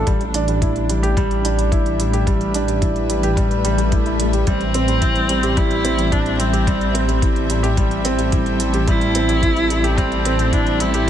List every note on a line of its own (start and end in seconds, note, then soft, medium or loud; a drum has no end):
0.00 5.23 D4 medium
0.07 4.45 A1 medium
0.07 0.20 G3 medium
0.07 11.10 G3 medium
0.07 kick medium
0.07 closed hi-hat soft
0.21 closed hi-hat soft
0.34 0.48 D4 medium
0.34 closed hi-hat medium
0.48 0.61 G3 medium
0.48 closed hi-hat soft
0.62 0.70 E4 medium
0.62 kick medium
0.62 closed hi-hat soft
0.76 closed hi-hat soft
0.89 1.03 G3 medium
0.89 closed hi-hat medium
1.03 1.16 G4 medium
1.03 closed hi-hat soft
1.17 1.30 G3 loud
1.17 kick medium
1.17 closed hi-hat soft
1.23 11.10 E5 medium
1.31 closed hi-hat soft
1.45 1.58 D4 medium
1.45 closed hi-hat medium
1.58 1.71 G3 medium
1.58 closed hi-hat soft
1.72 1.80 E4 medium
1.72 kick medium
1.72 closed hi-hat soft
1.86 closed hi-hat soft
2.00 2.13 G3 medium
2.00 5.74 B4 medium
2.00 closed hi-hat medium
2.13 2.27 G4 medium
2.13 closed hi-hat soft
2.27 2.40 G3 medium
2.27 kick medium
2.27 closed hi-hat soft
2.41 closed hi-hat soft
2.54 2.68 D4 medium
2.54 closed hi-hat medium
2.68 2.82 G3 medium
2.68 closed hi-hat soft
2.82 2.90 E4 medium
2.82 kick medium
2.82 closed hi-hat soft
2.96 closed hi-hat soft
3.10 3.23 G3 medium
3.10 closed hi-hat medium
3.23 3.36 G4 medium
3.23 closed hi-hat soft
3.37 3.50 G3 medium
3.37 kick medium
3.37 closed hi-hat soft
3.37 swell medium
3.51 closed hi-hat soft
3.64 3.77 G3 medium
3.64 closed hi-hat medium
3.78 3.92 G3 medium
3.78 closed hi-hat soft
3.92 4.00 E4 medium
3.92 kick medium
3.92 closed hi-hat soft
4.06 4.19 E4 medium
4.06 closed hi-hat soft
4.19 4.33 G3 medium
4.19 closed hi-hat medium
4.33 4.47 G4 medium
4.33 closed hi-hat soft
4.47 11.10 A1 medium
4.47 4.60 G3 medium
4.47 5.58 C4 medium
4.47 kick medium
4.47 closed hi-hat soft
4.61 closed hi-hat soft
4.74 4.88 C4 medium
4.74 closed hi-hat medium
4.82 11.10 C4 medium
4.88 5.02 G3 medium
4.88 closed hi-hat soft
5.02 5.10 E4 medium
5.02 kick medium
5.02 closed hi-hat soft
5.16 closed hi-hat soft
5.29 5.43 G3 medium
5.29 closed hi-hat medium
5.43 5.56 G4 medium
5.43 closed hi-hat soft
5.57 5.70 G3 medium
5.57 6.13 E4 loud
5.57 kick loud
5.57 closed hi-hat soft
5.71 closed hi-hat soft
5.84 5.98 C4 medium
5.84 closed hi-hat medium
5.98 6.12 G3 medium
5.98 closed hi-hat soft
6.11 6.41 D4 medium
6.11 6.20 E4 medium
6.11 kick medium
6.11 closed hi-hat soft
6.22 11.10 A4 medium
6.22 closed hi-hat soft
6.39 6.53 G3 medium
6.39 7.22 C4 medium
6.39 closed hi-hat medium
6.53 6.66 G4 medium
6.53 closed hi-hat soft
6.67 6.80 G3 medium
6.67 kick loud
6.67 closed hi-hat soft
6.81 closed hi-hat soft
6.94 7.08 C4 medium
6.94 closed hi-hat medium
7.08 7.21 G3 medium
7.08 closed hi-hat soft
7.22 7.30 E4 medium
7.22 kick loud
7.22 closed hi-hat soft
7.36 closed hi-hat soft
7.50 7.63 G3 medium
7.50 closed hi-hat medium
7.63 7.77 G4 medium
7.63 closed hi-hat soft
7.77 7.90 G3 medium
7.77 kick loud
7.77 closed hi-hat soft
7.91 closed hi-hat soft
8.05 8.18 C4 medium
8.05 closed hi-hat medium
8.19 8.32 G3 medium
8.19 closed hi-hat soft
8.32 8.40 E4 medium
8.32 kick loud
8.32 closed hi-hat soft
8.46 closed hi-hat soft
8.60 8.73 G3 medium
8.60 closed hi-hat medium
8.74 8.87 G4 medium
8.74 closed hi-hat soft
8.87 9.01 G3 loud
8.87 9.99 E4 loud
8.87 kick loud
8.87 closed hi-hat soft
9.01 closed hi-hat soft
9.15 9.28 C4 medium
9.15 closed hi-hat medium
9.29 9.42 G3 medium
9.29 closed hi-hat soft
9.43 9.50 E4 medium
9.43 kick loud
9.43 closed hi-hat soft
9.56 closed hi-hat soft
9.70 9.83 G3 medium
9.70 closed hi-hat medium
9.84 9.97 G4 loud
9.84 closed hi-hat soft
9.98 10.11 G3 medium
9.98 10.54 C4 medium
9.98 kick loud
9.98 closed hi-hat soft
10.12 closed hi-hat soft
10.25 10.38 C4 medium
10.25 closed hi-hat medium
10.39 10.52 G3 medium
10.39 closed hi-hat soft
10.53 10.82 D4 loud
10.53 10.61 E4 medium
10.53 kick loud
10.53 closed hi-hat soft
10.67 closed hi-hat soft
10.80 10.94 G3 medium
10.80 11.10 E4 medium
10.80 closed hi-hat medium
10.94 11.07 G4 medium
10.94 closed hi-hat soft